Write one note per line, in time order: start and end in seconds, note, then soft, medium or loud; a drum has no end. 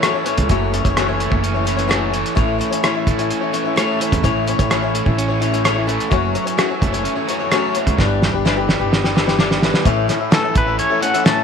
0.00 0.14 F#2 medium
0.00 0.25 E3 medium
0.00 0.14 E3 medium
0.00 0.14 F#3 medium
0.00 1.20 A3 medium
0.00 0.14 A3 medium
0.00 1.43 C#4 medium
0.00 0.13 C#4 medium
0.00 0.13 C#5 medium
0.00 cross-stick medium
0.00 closed hi-hat medium
0.14 0.23 E3 soft
0.14 0.24 A3 soft
0.14 0.25 C#4 soft
0.14 0.25 C#5 soft
0.24 0.48 E3 medium
0.24 0.97 E3 medium
0.24 0.49 A3 soft
0.24 0.49 C#4 medium
0.24 0.49 C#5 medium
0.24 closed hi-hat medium
0.38 0.49 C#2 medium
0.38 kick medium
0.38 closed hi-hat medium
0.49 0.82 F#1 medium
0.49 1.66 F#2 medium
0.49 0.73 F#2 medium
0.49 0.71 E3 medium
0.49 0.73 F#3 medium
0.49 0.72 A3 medium
0.49 0.73 C#4 medium
0.49 0.73 C#5 medium
0.49 kick medium
0.49 closed hi-hat soft
0.72 0.84 E3 medium
0.72 0.84 A3 medium
0.72 0.84 C#4 medium
0.72 0.83 C#5 medium
0.72 closed hi-hat soft
0.84 1.28 F#1 medium
0.84 0.96 E3 soft
0.84 0.96 A3 soft
0.84 0.96 C#4 soft
0.84 0.96 C#5 soft
0.84 kick medium
0.84 closed hi-hat medium
0.97 1.08 F#2 medium
0.97 1.67 E3 medium
0.97 1.08 E3 medium
0.97 1.08 F#3 medium
0.97 1.08 A3 medium
0.97 1.07 C#4 medium
0.97 1.07 C#5 medium
0.97 cross-stick medium
0.97 closed hi-hat medium
1.08 1.31 E3 soft
1.08 1.31 A3 soft
1.08 1.30 C#4 soft
1.08 1.29 C#5 soft
1.20 1.90 A3 medium
1.20 closed hi-hat soft
1.30 2.21 F#1 medium
1.30 1.55 E3 soft
1.30 1.54 A3 soft
1.30 1.54 C#4 soft
1.30 1.53 C#5 soft
1.30 kick medium
1.43 3.30 C#4 medium
1.43 closed hi-hat soft
1.54 1.64 E3 soft
1.54 1.65 A3 soft
1.54 1.65 C#4 soft
1.54 1.66 C#5 soft
1.65 1.77 E3 medium
1.65 2.14 E3 soft
1.65 1.77 A3 soft
1.65 1.76 C#4 medium
1.65 1.75 C#5 medium
1.65 closed hi-hat medium
1.76 1.88 E3 soft
1.76 1.88 A3 soft
1.76 1.88 C#4 soft
1.76 1.88 C#5 medium
1.76 closed hi-hat soft
1.88 2.12 F#2 medium
1.88 2.10 E3 medium
1.88 2.12 F#3 medium
1.88 2.12 A3 medium
1.88 3.06 A3 medium
1.88 2.12 C#4 medium
1.88 2.13 C#5 medium
1.88 cross-stick medium
1.88 closed hi-hat soft
2.12 2.35 E3 soft
2.12 2.83 E3 medium
2.12 2.34 A3 medium
2.12 2.35 C#4 medium
2.12 2.35 C#5 medium
2.12 closed hi-hat medium
2.26 closed hi-hat soft
2.35 2.59 A1 medium
2.35 3.54 A2 medium
2.35 2.57 A3 medium
2.35 2.59 C#4 medium
2.35 2.58 E4 medium
2.35 2.59 C#5 medium
2.35 kick medium
2.35 closed hi-hat soft
2.58 2.71 A3 medium
2.58 2.71 C#4 medium
2.58 2.71 E4 medium
2.58 2.69 C#5 medium
2.58 closed hi-hat soft
2.71 2.82 C#4 soft
2.71 2.82 E4 soft
2.71 2.83 C#5 soft
2.71 closed hi-hat medium
2.83 3.52 E3 medium
2.83 2.95 A3 medium
2.83 2.94 C#4 medium
2.83 2.95 E4 medium
2.83 2.93 C#5 medium
2.83 cross-stick medium
2.83 closed hi-hat soft
2.95 3.18 C#4 soft
2.95 3.19 E4 soft
2.95 3.17 C#5 medium
3.07 3.29 A1 medium
3.07 3.76 A3 medium
3.07 kick medium
3.07 closed hi-hat soft
3.18 3.41 C#4 soft
3.18 3.42 E4 soft
3.18 3.40 C#5 soft
3.18 closed hi-hat medium
3.30 5.17 C#4 medium
3.30 closed hi-hat medium
3.41 3.53 C#4 soft
3.41 3.52 E4 soft
3.41 3.53 C#5 medium
3.53 3.99 E3 medium
3.53 3.65 A3 medium
3.53 3.64 C#4 medium
3.53 3.65 E4 medium
3.53 3.63 C#5 medium
3.53 closed hi-hat medium
3.65 3.76 C#4 soft
3.65 3.76 E4 soft
3.65 3.77 C#5 soft
3.76 3.99 A3 medium
3.76 4.93 A3 medium
3.76 4.00 C#4 medium
3.76 4.00 E4 medium
3.76 4.01 C#5 medium
3.76 cross-stick medium
3.76 closed hi-hat medium
4.00 4.70 E3 medium
4.00 4.22 A3 medium
4.00 4.23 C#4 medium
4.00 4.22 E4 medium
4.00 4.23 C#5 medium
4.00 closed hi-hat medium
4.12 4.23 E2 medium
4.12 kick medium
4.12 closed hi-hat medium
4.23 4.57 A1 medium
4.23 5.41 A2 medium
4.23 4.45 A3 medium
4.23 4.47 C#4 medium
4.23 4.46 E4 medium
4.23 4.48 C#5 medium
4.23 kick medium
4.23 closed hi-hat soft
4.46 4.59 A3 medium
4.46 4.59 C#4 medium
4.46 4.59 E4 medium
4.46 4.57 C#5 medium
4.46 closed hi-hat medium
4.59 5.03 A1 medium
4.59 4.70 C#4 soft
4.59 4.70 E4 soft
4.59 4.70 C#5 medium
4.59 kick medium
4.59 closed hi-hat medium
4.70 5.41 E3 medium
4.70 4.82 A3 medium
4.70 4.82 C#4 medium
4.70 4.82 E4 medium
4.70 4.81 C#5 medium
4.70 cross-stick medium
4.70 closed hi-hat soft
4.82 5.05 C#4 soft
4.82 5.06 E4 soft
4.82 5.04 C#5 medium
4.94 5.64 A3 medium
4.94 closed hi-hat medium
5.05 5.96 A1 medium
5.05 5.28 C#4 soft
5.05 5.29 E4 soft
5.05 5.27 C#5 soft
5.05 kick medium
5.18 6.11 C#4 medium
5.18 closed hi-hat medium
5.28 5.40 C#4 soft
5.28 5.40 E4 soft
5.28 5.40 C#5 medium
5.40 5.87 E3 medium
5.40 5.52 A3 medium
5.40 5.52 C#4 medium
5.40 5.53 E4 medium
5.40 5.51 C#5 medium
5.40 closed hi-hat medium
5.52 5.64 C#4 soft
5.52 5.63 E4 soft
5.52 5.64 C#5 soft
5.52 closed hi-hat medium
5.64 5.76 A3 medium
5.64 6.12 A3 medium
5.64 5.76 C#4 loud
5.64 5.76 E4 medium
5.64 5.75 C#5 medium
5.64 cross-stick medium
5.64 closed hi-hat soft
5.76 5.87 C#4 soft
5.76 5.86 E4 soft
5.76 5.88 C#5 soft
5.87 6.10 E3 medium
5.87 6.10 A3 medium
5.87 6.10 C#4 medium
5.87 6.11 E4 medium
5.87 6.11 C#5 medium
5.87 closed hi-hat soft
6.00 closed hi-hat medium
6.10 6.33 F#1 medium
6.10 6.34 F#2 medium
6.10 6.33 E3 medium
6.10 6.57 F#3 medium
6.10 6.34 F#3 medium
6.10 6.34 A3 medium
6.10 6.34 C#4 medium
6.10 6.35 C#5 medium
6.10 kick medium
6.10 closed hi-hat soft
6.34 6.46 E3 medium
6.34 6.46 A3 medium
6.34 6.45 C#4 medium
6.34 6.44 C#5 medium
6.34 closed hi-hat soft
6.45 6.57 E3 soft
6.45 6.57 A3 soft
6.45 6.57 C#4 soft
6.45 6.57 C#5 soft
6.45 closed hi-hat medium
6.57 6.69 F#2 medium
6.57 6.70 E3 medium
6.57 6.70 F#3 medium
6.57 7.27 F#3 medium
6.57 6.70 A3 medium
6.57 6.69 C#4 loud
6.57 6.69 C#5 medium
6.57 cross-stick medium
6.57 closed hi-hat soft
6.70 6.93 E3 soft
6.70 6.93 A3 medium
6.70 6.92 C#4 medium
6.70 6.91 C#5 medium
6.81 7.04 F#1 medium
6.81 7.50 A3 medium
6.81 kick medium
6.81 closed hi-hat soft
6.92 7.17 E3 soft
6.92 7.16 A3 soft
6.92 7.15 C#4 soft
6.92 7.14 C#5 medium
6.92 closed hi-hat soft
7.04 7.98 C#4 medium
7.04 closed hi-hat soft
7.16 7.26 E3 soft
7.16 7.28 A3 soft
7.16 7.28 C#4 soft
7.16 7.28 C#5 medium
7.28 7.39 E3 medium
7.28 7.73 F#3 soft
7.28 7.39 A3 medium
7.28 7.39 C#4 medium
7.28 7.38 C#5 medium
7.28 closed hi-hat medium
7.39 7.51 E3 soft
7.39 7.51 A3 soft
7.39 7.52 C#4 medium
7.39 7.51 C#5 soft
7.51 7.75 F#2 medium
7.51 7.74 E3 medium
7.51 7.75 F#3 medium
7.51 7.98 A3 medium
7.51 7.75 A3 medium
7.51 7.75 C#4 medium
7.51 7.75 C#5 medium
7.51 cross-stick medium
7.51 closed hi-hat medium
7.74 7.98 E3 medium
7.74 7.98 F#3 medium
7.74 7.99 A3 medium
7.74 7.99 C#4 medium
7.74 8.00 C#5 medium
7.74 closed hi-hat medium
7.87 7.97 C#2 medium
7.87 kick medium
7.87 closed hi-hat soft
7.98 8.31 G1 medium
7.98 9.15 G2 medium
7.98 8.21 E3 medium
7.98 8.22 G3 medium
7.98 8.22 D4 medium
7.98 8.22 G4 medium
7.98 8.22 B4 medium
7.98 kick medium
7.98 snare soft
8.22 8.33 E3 medium
8.22 8.34 D4 medium
8.22 8.33 G4 medium
8.22 8.32 B4 medium
8.22 snare medium
8.33 8.77 G1 medium
8.33 8.44 D4 soft
8.33 8.45 G4 soft
8.33 8.45 B4 soft
8.45 9.14 E3 medium
8.45 8.57 E3 medium
8.45 8.57 G3 medium
8.45 8.57 D4 medium
8.45 8.56 G4 medium
8.45 8.55 B4 medium
8.45 snare medium
8.56 8.80 D4 soft
8.56 8.79 G4 medium
8.56 8.78 B4 medium
8.69 9.38 G3 medium
8.69 snare medium
8.80 9.69 G1 medium
8.80 9.04 D4 soft
8.80 9.03 G4 soft
8.80 9.02 B4 soft
8.92 9.85 B3 medium
8.92 snare medium
9.03 9.14 D4 soft
9.03 9.15 G4 soft
9.03 9.15 B4 soft
9.03 snare soft
9.14 9.26 E3 medium
9.14 9.61 E3 medium
9.14 9.27 D4 medium
9.14 9.26 G4 medium
9.14 9.25 B4 medium
9.14 snare medium
9.26 9.39 D4 soft
9.26 9.39 G4 soft
9.26 9.38 B4 soft
9.26 snare medium
9.39 9.50 E3 medium
9.39 9.85 G3 medium
9.39 9.50 G3 medium
9.39 9.51 D4 medium
9.39 9.50 G4 medium
9.39 9.49 B4 medium
9.39 snare medium
9.50 9.62 D4 soft
9.50 9.62 G4 soft
9.50 9.62 B4 soft
9.50 snare medium
9.62 9.84 E3 soft
9.62 9.85 E3 medium
9.62 9.85 D4 medium
9.62 9.86 G4 medium
9.62 9.86 B4 medium
9.62 snare medium
9.74 snare medium
9.85 10.07 A1 medium
9.85 10.08 A2 medium
9.85 11.01 A2 medium
9.85 10.08 E3 medium
9.85 10.06 A3 medium
9.85 10.08 C#4 medium
9.85 10.08 E4 medium
9.85 10.09 A4 medium
9.85 kick medium
9.85 closed hi-hat medium
10.08 10.20 A3 medium
10.08 10.20 C#4 medium
10.08 10.19 E4 medium
10.08 10.18 A4 medium
10.08 snare soft
10.08 closed hi-hat medium
10.19 10.30 A3 soft
10.19 10.31 C#4 soft
10.19 10.31 E4 soft
10.19 10.31 A4 medium
10.31 10.43 A2 medium
10.31 11.00 E3 medium
10.31 10.43 E3 medium
10.31 10.43 A3 medium
10.31 10.43 C#4 medium
10.31 10.43 E4 medium
10.31 10.42 A4 medium
10.31 10.55 A4 medium
10.31 snare loud
10.31 closed hi-hat medium
10.43 10.68 A3 soft
10.43 10.67 C#4 soft
10.43 10.66 E4 soft
10.43 10.65 A4 medium
10.54 10.77 A1 medium
10.54 11.25 A3 medium
10.54 10.79 B4 medium
10.54 kick medium
10.54 closed hi-hat medium
10.67 10.91 A3 soft
10.67 10.91 C#4 soft
10.67 10.90 E4 soft
10.67 10.89 A4 medium
10.78 11.44 C#4 medium
10.78 11.01 C#5 medium
10.78 closed hi-hat medium
10.90 11.01 A3 soft
10.90 11.02 C#4 soft
10.90 11.02 E4 soft
10.90 11.01 A4 soft
11.00 11.44 E3 medium
11.00 11.14 A3 medium
11.00 11.14 C#4 medium
11.00 11.13 E4 medium
11.00 11.24 F#5 medium
11.00 closed hi-hat medium
11.04 11.12 A4 medium
11.14 11.25 A3 soft
11.14 11.25 C#4 soft
11.14 11.25 E4 medium
11.14 11.25 A4 soft
11.14 closed hi-hat medium
11.25 11.44 A2 medium
11.25 11.44 E3 medium
11.25 11.44 A3 medium
11.25 11.44 C#4 medium
11.25 11.44 E4 medium
11.25 11.44 A4 medium
11.25 11.44 A5 medium
11.25 snare loud
11.25 closed hi-hat medium